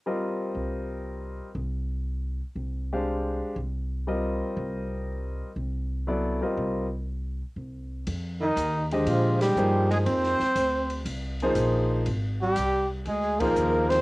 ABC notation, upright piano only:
X:1
M:4/4
L:1/8
Q:"Swing" 1/4=120
K:Fdor
V:1 name="Upright piano"
[G,CFBe]4- [G,CFBe] z3 | z3 [A,DGcf]3 z2 | [G,CFBe]4- [G,CFBe] z3 | [_G,=B,=E=Ad] [=G,CF_B_e]2 z4 z |
z3 [D,A,Gce]3 [F,B,EAc]2- | [F,B,EAc] z4 [F,B,EAc]3 | z4 z [F,B,EAc]3 |]